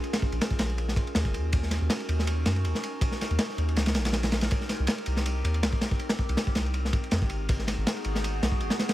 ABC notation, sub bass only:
X:1
M:4/4
L:1/16
Q:"Swing 16ths" 1/4=161
K:Ebm
V:1 name="Sub bass" clef=bass
z3 B,,, z2 B,,,4 z2 E,, F,,, E,,2- | E,,3 E,, z2 E,,4 G,,2 E,, z3 | z3 E,, z2 E,,2 D,,2 B,,,6 | z3 =C,, z2 C,,4 E,,2 C,, z3 |
z3 =C,, z2 C,,4 z2 F,, =G,,, A,,,2- | A,,,3 A,,, z2 A,,,4 C,,2 A,,, z3 |]